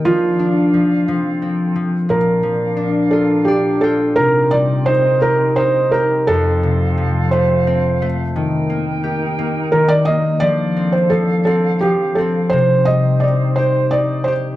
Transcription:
<<
  \new Staff \with { instrumentName = "Felt piano" } { \time 6/8 \key c \dorian \tempo 4. = 58 f'2. | bes'4. a'8 g'8 a'8 | bes'8 d''8 c''8 bes'8 c''8 bes'8 | a'4. c''4 r8 |
r2 bes'16 d''16 ees''8 | d''8. c''16 a'8 a'8 g'8 a'8 | c''8 ees''8 d''8 c''8 d''8 c''8 | }
  \new Staff \with { instrumentName = "Flute section" } { \time 6/8 \key c \dorian << { f''2. | f''2. | ees'2. | f''2. |
g''2. | f''2. | c''2. | } \\ { <d' bes'>4. <c' a'>4. | <d' d''>2. | <c' bes'>2. | <c' a'>2. |
<ees' bes'>2. | <d' a'>2. | <c' ees'>2. | } >> }
  \new Staff \with { instrumentName = "Harp" } { \time 6/8 \key c \dorian f8 d'8 f8 f8 c'8 f8 | bes,8 f8 d'8 f'8 <d' d''>8 <f' g''>8 | c8 g8 ees'8 g'8 ees'8 g'8 | f,8 c8 f8 a8 c'8 a8 |
ees8 bes8 g'8 bes8 ees8 bes8 | f8 c'8 f8 c'8 f8 c'8 | c8 g8 ees'8 g'8 ees'8 g'8 | }
>>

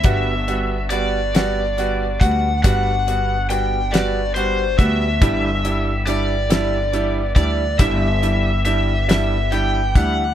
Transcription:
<<
  \new Staff \with { instrumentName = "Electric slide guitar" } { \time 6/8 \key g \major \tempo 4. = 46 e''4 d''4. fis''8 | fis''4 g''8 d''8 c''8 e''8~ | e''4 d''4. d''8 | e''4 e''8 e''8 g''8 fis''8 | }
  \new Staff \with { instrumentName = "Grand piano" } { \time 6/8 \key g \major <g b fis'>8 <g b fis'>8 <g b fis'>8 <g b fis'>8 <g b fis'>8 <g b fis'>8 | <g b fis'>8 <g b fis'>8 <g b fis'>8 <g b fis'>8 <g b fis'>8 <g b fis'>8 | <g d' e'>8 <g d' e'>8 <g d' e'>8 <g d' e'>8 <g d' e'>8 <g d' e'>8 | <g d' e'>8 <g d' e'>8 <g d' e'>8 <g d' e'>8 <g d' e'>8 <g d' e'>8 | }
  \new Staff \with { instrumentName = "Clean electric guitar" } { \time 6/8 \key g \major <g b d' fis'>8 <b d' fis'>8 <g b d' fis'>8 <g b d' fis'>8 <g b d' fis'>8 <b d' fis'>8 | <g b d' fis'>8 <b d' fis'>8 <g b d'>8 <g b d' fis'>8 <g d' fis'>8 <b d' fis'>8 | <g, d e g b g'>8 <e g b g'>8 <e g b g'>8 <g, d e g b g'>8 <e g b g'>8 <e g b g'>8 | <g, d e g b g'>8 <e g b g'>8 <e g b g'>8 <g, d e g b g'>8 <e g b g'>8 <e g b g'>8 | }
  \new Staff \with { instrumentName = "Upright bass" } { \clef bass \time 6/8 \key g \major g,,2~ g,,8 d,8 | g,,2~ g,,8 d,8 | g,,2~ g,,8 d,8 | g,,2~ g,,8 d,8 | }
  \new DrumStaff \with { instrumentName = "Drums" } \drummode { \time 6/8 <hh bd>8 hh8 hh8 <hh sn>8 hh8 <hh bd>8 | <hh bd>8 hh8 hh8 <hh sn>8 hh8 <hh bd>8 | <hh bd>8 hh8 hh8 <hh sn>8 hh8 <hh bd>8 | <hh bd>8 hh8 hh8 <hh sn>8 hh8 <hh bd>8 | }
>>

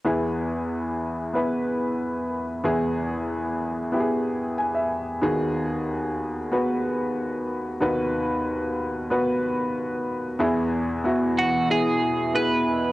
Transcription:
<<
  \new Staff \with { instrumentName = "Clean electric guitar" } { \time 4/4 \key e \major \tempo 4 = 93 r1 | r1 | r1 | r1 |
r4. fis'8 gis'4 b'4 | }
  \new Staff \with { instrumentName = "Upright piano" } { \time 4/4 \key e \major << { r1 | r2. gis''16 e''8. | r1 | r1 |
r1 | } \\ { <b e' gis'>4.~ <b e' gis'>16 r16 <b e' b'>4.~ <b e' b'>16 r16 | <b e' gis'>4.~ <b e' gis'>16 r16 <b e' g' gis'>4.~ <b e' g' gis'>16 r16 | <b fis' gis'>4.~ <b fis' gis'>16 r16 <b fis' b'>4.~ <b fis' b'>16 r16 | <b fis' b'>4.~ <b fis' b'>16 r16 <b fis' b'>4.~ <b fis' b'>16 r16 |
<b e' gis'>4 <b e' fis'>4 <b e' gis'>4 <b e' gis'>4 | } >> }
  \new Staff \with { instrumentName = "Upright piano" } { \clef bass \time 4/4 \key e \major <e, e>1 | <e, e>1 | <dis, dis>1 | <dis, dis>1 |
<e, e>1 | }
  \new Staff \with { instrumentName = "Analog synth pad" } { \time 4/4 \key e \major r1 | r1 | r1 | r1 |
<b, e b e' gis''>1 | }
>>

